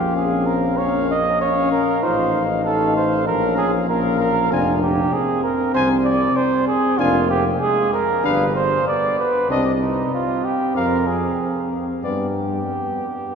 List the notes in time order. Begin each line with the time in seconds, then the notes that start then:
Already playing: A#1 C#4 G4 F5
0.17 C4 G#4
0.46 A#4
0.78 A#3 C#4 C#5 F5
1.11 D#5
1.40 C#4 C#5 F5
1.72 A#4
2.02 A1 D#4 F4 C5 F5
2.34 D#4
2.65 D#4 A4 F5
2.96 C5
3.27 A#1 C#4 A#4 F5
3.57 G#4
3.89 A#3 C#4 A#4 F5
4.19 A#4
4.51 F1 C4 D4 F4 G#5
4.83 G4
5.13 C4 G#4
5.43 A#4
5.74 C2 C4 C5 G#5
6.05 D5
6.36 C5
6.68 G#4
6.98 F1 A#3 D4 F4 G#5
7.30 G4
7.61 G#3 G#4
7.94 A#4
8.23 G1 G3 D4 B4 F5
8.55 C5
8.88 B3 D5
9.19 B4
9.48 C2 C4 D4 D#5
9.83 D#4
10.14 C4 F4
10.45 G4
10.74 F2 C4 A#4 F5
11.07 G#4
12.03 G2 B3 G4 D5